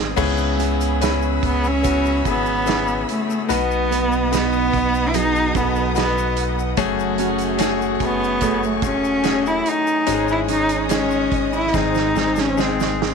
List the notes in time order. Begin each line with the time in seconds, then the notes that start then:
Already playing: G#1 G#2 D#3 B3 C4 D#4 G#4 D#5 G#5 C6 D#6
0.16 C#2 G#2 C#3 B3 C#4 E4 G#4 C#5 B5 E6, kick, crash, shaker
0.38 shaker
0.58 B3 E4 G#4, closed hi-hat, shaker
0.81 closed hi-hat, shaker
1.01 B3 C#4 E4 B4, snare, closed hi-hat, shaker
1.22 shaker
1.43 C#2 B3, kick, closed hi-hat
1.64 C#4, shaker
1.83 B3 C#4 E4 F#4, kick, closed hi-hat, shaker
2.05 shaker
2.25 G#1 B3 C#4 E4 G#4, kick, closed hi-hat, shaker
2.46 shaker
2.66 B3 C#4 E4 G#4, snare, closed hi-hat, shaker
2.87 shaker
3.09 A3, closed hi-hat
3.30 shaker
3.49 B1 B2 B3 D#4 F#4 B4 D#5 F#5 D#6, closed hi-hat, shaker
3.71 shaker
3.91 B3 D#4 B4, closed hi-hat, shaker
4.12 shaker
4.31 B3 D#4 F#4 B4, snare, closed hi-hat, shaker
4.53 shaker
4.74 B1, kick, closed hi-hat
4.94 shaker
5.08 E4
5.13 F#3 B3 D#4 F#4 G#4, closed hi-hat, shaker
5.36 shaker
5.54 B1 B3 D#4 F#4 A4, kick, closed hi-hat, shaker
5.75 shaker
5.95 B3 D#4 F#4 B4, snare, closed hi-hat, shaker
6.18 shaker
6.36 closed hi-hat
6.59 shaker
6.77 F#1 C#3 F#3 A3 C#4 F#4 G#4 G#5 C#6, kick, closed hi-hat, shaker
6.99 shaker
7.18 C#4 F#4 G#4, closed hi-hat, shaker
7.38 closed hi-hat, shaker
7.58 A3 C#4 F#4 G#4, snare, closed hi-hat, shaker
7.81 shaker
8.00 F#1 B3, kick, closed hi-hat
8.24 shaker
8.41 A3 C#4 F#4 G#4, kick, closed hi-hat, shaker
8.63 A3, shaker
8.82 E1 A3 C#4 F#4 G#4, kick, closed hi-hat, shaker
8.86 C#4
9.04 shaker
9.23 A3 C#4 F#4 G#4, snare, closed hi-hat, shaker
9.46 E4, shaker
9.66 D#4, closed hi-hat
9.87 shaker
10.06 G#1 G#2 D#3 G#3 C#4 D#4 F#4 C#5 D#5 D#6, closed hi-hat, shaker
10.14 G#4
10.28 E4, shaker
10.48 C#4 D#4 G#4, closed hi-hat, shaker
10.69 closed hi-hat, shaker
10.89 G#3 C#4 D#4 G#4, snare, closed hi-hat, shaker
11.11 shaker
11.32 G#1, kick, closed hi-hat
11.53 E4, shaker
11.73 G#1 G#2 D#3 G#3 C4 D#4 G#4 C5, kick, snare, shaker
11.94 snare, shaker
12.14 G#1 G#3 C4 D#4 G#4, snare, shaker
12.36 C#4, snare, shaker
12.57 G#3 C4 D#4 G#4, snare, shaker
12.80 snare, shaker
13.02 snare